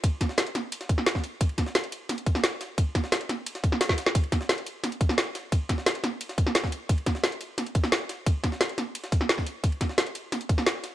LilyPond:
\new DrumStaff \with { instrumentName = "Drums" } \drummode { \time 4/4 \tempo 4 = 175 <hh bd cymr>8 <hh bd cymr sn>16 sn16 <hh cymr sn>16 hh16 <hh cymr sn>8 <hh cymr>16 <hh sn>16 <hh bd cymr>16 sn16 <hh cymr sn>16 <bd sn>16 <hh cymr>8 | <hh bd cymr>16 cymr16 <hh bd cymr sn>16 sn16 <hh cymr sn>16 hh16 <hh cymr>8 <hh cymr sn>16 <hh cymr>16 <hh bd cymr>16 sn16 <hh cymr sn>8 <hh cymr sn>8 | <hh bd cymr>8 <hh bd cymr sn>16 sn16 <hh cymr sn>16 hh16 <hh cymr sn>8 <hh cymr>16 <hh sn>16 <hh bd cymr>16 sn16 <hh cymr sn>16 <bd sn>16 <hh cymr sn>16 <hh sn>16 | <hh bd cymr>16 cymr16 <hh bd cymr sn>16 sn16 <hh cymr sn>16 hh16 <hh cymr>8 <hh cymr sn>16 <hh cymr>16 <hh bd cymr>16 sn16 <hh cymr sn>8 <hh cymr sn>8 |
<hh bd cymr>8 <hh bd cymr sn>16 sn16 <hh cymr sn>16 hh16 <hh cymr sn>8 <hh cymr>16 <hh sn>16 <hh bd cymr>16 sn16 <hh cymr sn>16 <bd sn>16 <hh cymr>8 | <hh bd cymr>16 cymr16 <hh bd cymr sn>16 sn16 <hh cymr sn>16 hh16 <hh cymr>8 <hh cymr sn>16 <hh cymr>16 <hh bd cymr>16 sn16 <hh cymr sn>8 <hh cymr sn>8 | <hh bd cymr>8 <hh bd cymr sn>16 sn16 <hh cymr sn>16 hh16 <hh cymr sn>8 <hh cymr>16 <hh sn>16 <hh bd cymr>16 sn16 <hh cymr sn>16 <bd sn>16 <hh cymr>8 | <hh bd cymr>16 cymr16 <hh bd cymr sn>16 sn16 <hh cymr sn>16 hh16 <hh cymr>8 <hh cymr sn>16 <hh cymr>16 <hh bd cymr>16 sn16 <hh cymr sn>8 <hh cymr sn>8 | }